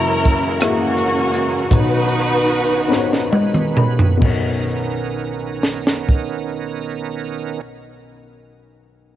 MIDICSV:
0, 0, Header, 1, 5, 480
1, 0, Start_track
1, 0, Key_signature, 5, "major"
1, 0, Tempo, 724638
1, 1133, Time_signature, 6, 3, 24, 8
1, 1133, Tempo, 780234
1, 1613, Tempo, 829876
1, 2093, Tempo, 896861
1, 2573, Tempo, 934579
1, 5113, End_track
2, 0, Start_track
2, 0, Title_t, "Upright piano"
2, 0, Program_c, 0, 0
2, 0, Control_c, 0, 64, 127
2, 0, Note_on_c, 0, 30, 53
2, 0, Note_on_c, 0, 42, 49
2, 0, Note_on_c, 0, 58, 63
2, 0, Note_on_c, 0, 64, 60
2, 0, Note_on_c, 0, 66, 63
2, 0, Note_on_c, 0, 68, 59
2, 0, Note_on_c, 0, 73, 70
2, 334, Note_off_c, 0, 58, 0
2, 336, Note_off_c, 0, 64, 0
2, 337, Note_off_c, 0, 66, 0
2, 338, Note_off_c, 0, 68, 0
2, 340, Note_off_c, 0, 73, 0
2, 402, Note_on_c, 0, 58, 54
2, 406, Note_on_c, 0, 64, 53
2, 408, Note_on_c, 0, 66, 51
2, 414, Note_on_c, 0, 68, 54
2, 414, Note_on_c, 0, 76, 64
2, 1060, Note_off_c, 0, 58, 0
2, 1062, Note_off_c, 0, 64, 0
2, 1063, Note_off_c, 0, 66, 0
2, 1066, Note_off_c, 0, 68, 0
2, 1066, Note_off_c, 0, 76, 0
2, 1110, Note_off_c, 0, 30, 0
2, 1111, Note_off_c, 0, 42, 0
2, 1132, Note_on_c, 0, 59, 62
2, 1135, Note_on_c, 0, 63, 59
2, 1137, Note_on_c, 0, 35, 55
2, 1140, Note_on_c, 0, 47, 51
2, 1141, Control_c, 0, 64, 0
2, 1141, Note_on_c, 0, 66, 56
2, 1142, Note_on_c, 0, 82, 59
2, 1143, Note_on_c, 0, 73, 69
2, 1237, Control_c, 0, 64, 127
2, 1779, Note_off_c, 0, 59, 0
2, 1781, Note_off_c, 0, 63, 0
2, 1784, Note_off_c, 0, 66, 0
2, 1784, Note_off_c, 0, 82, 0
2, 1785, Note_off_c, 0, 73, 0
2, 1838, Note_on_c, 0, 59, 63
2, 1839, Note_on_c, 0, 63, 57
2, 1844, Note_on_c, 0, 66, 60
2, 1845, Note_on_c, 0, 82, 59
2, 1848, Note_on_c, 0, 72, 58
2, 1889, Note_on_c, 0, 73, 70
2, 1894, Note_off_c, 0, 72, 0
2, 2088, Note_on_c, 0, 75, 57
2, 2310, Note_off_c, 0, 75, 0
2, 2326, Note_on_c, 0, 83, 56
2, 2496, Note_off_c, 0, 59, 0
2, 2497, Note_off_c, 0, 63, 0
2, 2499, Note_off_c, 0, 66, 0
2, 2499, Note_off_c, 0, 82, 0
2, 2519, Note_off_c, 0, 73, 0
2, 2549, Note_on_c, 0, 59, 60
2, 2554, Note_off_c, 0, 35, 0
2, 2555, Note_off_c, 0, 47, 0
2, 2555, Note_off_c, 0, 83, 0
2, 2559, Note_on_c, 0, 63, 58
2, 2567, Note_on_c, 0, 35, 61
2, 2568, Note_on_c, 0, 66, 54
2, 2579, Note_on_c, 0, 70, 58
2, 2581, Control_c, 0, 64, 0
2, 2587, Note_on_c, 0, 73, 71
2, 2677, Control_c, 0, 64, 127
2, 4290, Note_off_c, 0, 59, 0
2, 4299, Note_off_c, 0, 63, 0
2, 4307, Note_off_c, 0, 35, 0
2, 4308, Note_off_c, 0, 66, 0
2, 4318, Note_off_c, 0, 70, 0
2, 4327, Note_off_c, 0, 73, 0
2, 5113, End_track
3, 0, Start_track
3, 0, Title_t, "String section"
3, 0, Program_c, 1, 48
3, 0, Note_on_c, 1, 61, 59
3, 0, Note_on_c, 1, 64, 60
3, 0, Note_on_c, 1, 70, 82
3, 379, Note_off_c, 1, 70, 0
3, 381, Note_off_c, 1, 61, 0
3, 381, Note_off_c, 1, 64, 0
3, 399, Note_on_c, 1, 66, 78
3, 411, Note_on_c, 1, 58, 59
3, 411, Note_on_c, 1, 61, 55
3, 1111, Note_off_c, 1, 58, 0
3, 1111, Note_off_c, 1, 61, 0
3, 1126, Note_on_c, 1, 71, 88
3, 1127, Note_off_c, 1, 66, 0
3, 1133, Note_on_c, 1, 63, 67
3, 1135, Note_on_c, 1, 66, 65
3, 2070, Note_off_c, 1, 63, 0
3, 2071, Note_off_c, 1, 66, 0
3, 2090, Note_off_c, 1, 71, 0
3, 5113, End_track
4, 0, Start_track
4, 0, Title_t, "Tonewheel organ"
4, 0, Program_c, 2, 16
4, 0, Note_on_c, 2, 52, 53
4, 0, Note_on_c, 2, 56, 50
4, 0, Note_on_c, 2, 58, 47
4, 0, Note_on_c, 2, 66, 60
4, 1108, Note_off_c, 2, 58, 0
4, 1108, Note_off_c, 2, 66, 0
4, 1110, Note_off_c, 2, 52, 0
4, 1110, Note_off_c, 2, 56, 0
4, 1130, Note_on_c, 2, 61, 48
4, 1131, Note_on_c, 2, 51, 55
4, 1133, Note_on_c, 2, 59, 48
4, 1133, Note_on_c, 2, 71, 58
4, 2551, Note_off_c, 2, 51, 0
4, 2551, Note_off_c, 2, 61, 0
4, 2552, Note_off_c, 2, 59, 0
4, 2552, Note_off_c, 2, 71, 0
4, 2572, Note_on_c, 2, 51, 64
4, 2573, Note_on_c, 2, 59, 57
4, 2576, Note_on_c, 2, 70, 68
4, 2578, Note_on_c, 2, 61, 57
4, 4312, Note_off_c, 2, 51, 0
4, 4313, Note_off_c, 2, 59, 0
4, 4316, Note_off_c, 2, 70, 0
4, 4317, Note_off_c, 2, 61, 0
4, 5113, End_track
5, 0, Start_track
5, 0, Title_t, "Drums"
5, 165, Note_on_c, 9, 42, 36
5, 169, Note_on_c, 9, 36, 71
5, 231, Note_off_c, 9, 42, 0
5, 235, Note_off_c, 9, 36, 0
5, 402, Note_on_c, 9, 42, 86
5, 410, Note_on_c, 9, 37, 89
5, 468, Note_off_c, 9, 42, 0
5, 476, Note_off_c, 9, 37, 0
5, 642, Note_on_c, 9, 42, 38
5, 709, Note_off_c, 9, 42, 0
5, 886, Note_on_c, 9, 42, 44
5, 952, Note_off_c, 9, 42, 0
5, 1133, Note_on_c, 9, 36, 97
5, 1134, Note_on_c, 9, 42, 82
5, 1195, Note_off_c, 9, 36, 0
5, 1195, Note_off_c, 9, 42, 0
5, 1365, Note_on_c, 9, 42, 47
5, 1427, Note_off_c, 9, 42, 0
5, 1612, Note_on_c, 9, 42, 32
5, 1670, Note_off_c, 9, 42, 0
5, 1860, Note_on_c, 9, 38, 45
5, 1918, Note_off_c, 9, 38, 0
5, 1983, Note_on_c, 9, 38, 42
5, 2041, Note_off_c, 9, 38, 0
5, 2096, Note_on_c, 9, 48, 61
5, 2149, Note_off_c, 9, 48, 0
5, 2211, Note_on_c, 9, 47, 57
5, 2265, Note_off_c, 9, 47, 0
5, 2331, Note_on_c, 9, 45, 67
5, 2385, Note_off_c, 9, 45, 0
5, 2451, Note_on_c, 9, 43, 70
5, 2504, Note_off_c, 9, 43, 0
5, 2573, Note_on_c, 9, 36, 79
5, 2575, Note_on_c, 9, 49, 70
5, 2625, Note_off_c, 9, 36, 0
5, 2626, Note_off_c, 9, 49, 0
5, 3300, Note_on_c, 9, 38, 48
5, 3351, Note_off_c, 9, 38, 0
5, 3422, Note_on_c, 9, 38, 54
5, 3473, Note_off_c, 9, 38, 0
5, 3533, Note_on_c, 9, 36, 68
5, 3585, Note_off_c, 9, 36, 0
5, 5113, End_track
0, 0, End_of_file